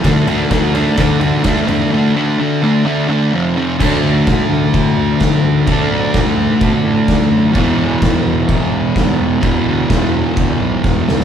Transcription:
<<
  \new Staff \with { instrumentName = "Distorted electric guitar" } { \time 4/4 \key d \lydian \tempo 4 = 128 <d a d'>8 <d a d'>8 <d a d'>8 <d a d'>8 <d a d'>8 <d a d'>8 <d a d'>8 <d a d'>8 | <d a d'>8 <d a d'>8 <d a d'>8 <d a d'>8 <d a d'>8 <d a d'>8 <f, c f>8 <f, c f>8 | <d a d'>1 | <d a d'>1 |
<e, b, e>1 | <e, b, e>1 | }
  \new Staff \with { instrumentName = "Picked electric bass" } { \clef bass \time 4/4 \key d \lydian d,8 d,8 d,4 d,4 d,8 e,8 | r1 | d,8 d,8 d,8 d,8 a,8 d,8 b,,8 d,8 | d,8 b,,8 d,4 b,8 a,8 d,8 fis,8 |
e,,8 e,,8 e,,8 e,,8 b,,8 e,,8 d,8 e,,8 | e,,8 d,8 e,,4 d,8 b,,8 e,,8 cis,8 | }
  \new DrumStaff \with { instrumentName = "Drums" } \drummode { \time 4/4 <bd cymr sn>8 cymr8 <bd cymr sn>8 cymr8 <bd cymr sn>8 cymr8 <bd cymr sn>8 cymr8 | r4 r4 r4 r4 | <cymc bd>4 <cymc bd sn>4 <cymc bd>4 <cymc bd sn>4 | <cymc bd>4 <cymc bd sn>4 <cymc bd>4 <cymc bd sn>4 |
<cymc bd>4 <cymc bd sn>4 <cymc bd>4 <cymc bd sn>4 | <cymc bd>4 <cymc bd sn>4 <cymc bd>4 <bd sn>8 sn16 sn16 | }
>>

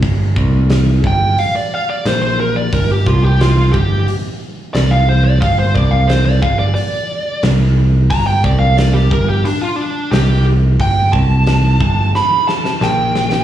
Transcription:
<<
  \new Staff \with { instrumentName = "Lead electric guitar" } { \time 4/4 \key c \major \tempo 4 = 89 r4. g''8 f''16 d''16 f''16 d''16 c''16 c''16 bes'16 d''16 | bes'16 g'16 f'16 g'16 f'8 g'8 r4 d''16 f''16 c''16 d''16 | f''16 c''16 d''16 f''16 c''16 d''16 f''16 d''16 d''4 r4 | bes''16 g''16 d''16 f''16 d''16 g'16 bes'16 g'16 d'16 f'16 d'8 g'8 r8 |
g''8 a''4. b''8 a''8 g''4 | }
  \new Staff \with { instrumentName = "Picked electric bass" } { \clef bass \time 4/4 \key c \major g,,8 c,4 g,,8 r4 bes,,4 | g,,8 c,4 g,,8 r4 c,4 | g,,8 c,4 g,,8 r4 c,4 | r8 c,4 g,,8 r4 c,4 |
g,,8 c,4 g,,8 r4 bes,,4 | }
  \new DrumStaff \with { instrumentName = "Drums" } \drummode { \time 4/4 <hho bd>8 bd8 <hho sn>8 bd8 hho4 <hho sn>4 | <hho bd>8 bd8 <hho sn>8 bd8 hho4 <hho sn>4 | <hho bd>8 bd8 <hho sn>8 bd8 hho4 <hho sn>4 | <hho bd>8 bd8 <hho sn>8 bd8 hho4 <hho sn>4 |
<hho bd>8 bd8 <hho sn>8 bd8 sn8 sn16 sn16 sn8 sn16 sn16 | }
>>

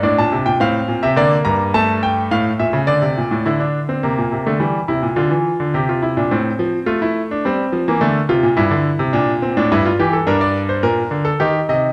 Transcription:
<<
  \new Staff \with { instrumentName = "Grand piano" } { \time 3/4 \key d \phrygian \tempo 4 = 106 << { d''16 a''8 g''16 f''8. e''16 d''8 bes''8 | a''8 g''8 f''8 e''8 d''4 | r2. | r2. |
r2. | r2. | \key g \minor bes'16 d''8 c''16 bes'8. a'16 g'8 ees''8 | } \\ { d'4 c'4 bes4 | a2. | e'16 d'8 c'16 bes8. a16 g8 e'8 | f'4 g'16 f'16 e'16 d'16 c'4 |
f'16 e'8 d'16 c'8. bes16 a8 f'8 | e'4 d'8 c'16 d'16 e'16 f'16 g'16 a'16 | d'2 ees'4 | } >> }
  \new Staff \with { instrumentName = "Grand piano" } { \clef bass \time 3/4 \key d \phrygian a,16 bes,16 c16 bes,16 a,8 bes,16 c16 d8 g,8~ | g,4 a,8 bes,16 cis16 d16 c16 bes,16 a,16 | d4 c16 bes,16 c16 d16 e8 c16 bes,16 | d16 e8 d16 c8. bes,16 a,8 f8 |
a4 g8 f16 e16 d8 c16 bes,16 | g,16 d8 c16 bes,8. a,16 g,8 e8 | \key g \minor g,4 bes,8 d8 ees8 c8 | }
>>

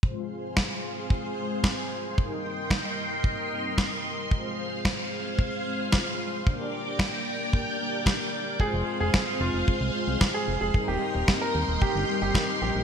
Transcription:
<<
  \new Staff \with { instrumentName = "String machine" } { \time 4/4 \key f \dorian \tempo 4 = 112 << { c'''1~ | c'''1~ | c'''1 | d'''1 |
c'''1~ | c'''1 | } \\ { <aes' c'' f''>1 | <bes' ees'' g''>1 | <aes' c'' f''>1 | <bes' d'' g''>1 |
<aes' c'' f''>1 | <bes' ees'' g''>1 | } >> }
  \new Staff \with { instrumentName = "Grand piano" } { \time 4/4 \key f \dorian r1 | r1 | r1 | r1 |
aes'8. aes'8. f'8. r4 aes'8 aes'16~ | aes'16 g'8. r16 bes'8. g'8. g'8. g'8 | }
  \new Staff \with { instrumentName = "Analog polysynth" } { \time 4/4 \key f \dorian <aes c' f' c''>2~ <aes c' f' c''>8 <aes c' f' c''>4. | <g c' ees' bes'>2~ <g c' ees' bes'>8 <g c' ees' bes'>4. | <aes c' f'>2~ <aes c' f'>8 <aes c' f' c''>4. | <bes d' g' d''>2~ <bes d' g' d''>8 <bes d' g' d''>4. |
<aes c' f' c''>2~ <aes c' f' c''>8 <aes c' f' c''>4. | <g c' ees' bes'>2~ <g c' ees' bes'>8 <g c' ees' bes'>4. | }
  \new Staff \with { instrumentName = "Analog synth bass" } { \clef bass \time 4/4 \key f \dorian r1 | r1 | r1 | r1 |
r16 f,,16 r16 f,,16 r8 f,,16 f,,16 r16 c,16 r16 c,16 r8 f,,16 f,,16 | r16 ees,,16 r16 ees,,16 r8 ees,16 ees,,16 r16 g,,16 r16 g,,16 r8 bes,,16 bes,,16 | }
  \new DrumStaff \with { instrumentName = "Drums" } \drummode { \time 4/4 bd4 <bd sn>4 bd4 <bd sn>4 | bd4 <bd sn>4 bd4 <bd sn>4 | bd4 <bd sn>4 bd4 <bd sn>4 | bd4 <bd sn>4 bd4 <bd sn>4 |
bd4 <bd sn>4 bd4 <bd sn>4 | bd4 <bd sn>4 bd4 <bd sn>4 | }
>>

